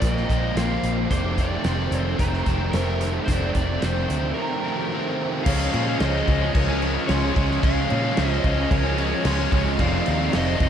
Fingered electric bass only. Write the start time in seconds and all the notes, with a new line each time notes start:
0.02 A#1
0.30 A#1
0.55 A#1
0.83 A#1
1.11 F1
1.65 F1
1.91 F1
2.19 F1
2.47 F1
2.73 F1
3.28 F1
3.55 F1
3.83 F1
4.10 D2
5.46 C#2
5.74 A#2
6.00 C#2
6.28 C#2
6.55 C#2
7.09 C#2
7.37 C#2
7.64 C#2
7.91 A#2
8.18 C#2
8.44 C#2
8.71 C#2
9.25 C#2
9.53 C#2
9.79 F1
10.08 D#2
10.34 F1
10.61 F1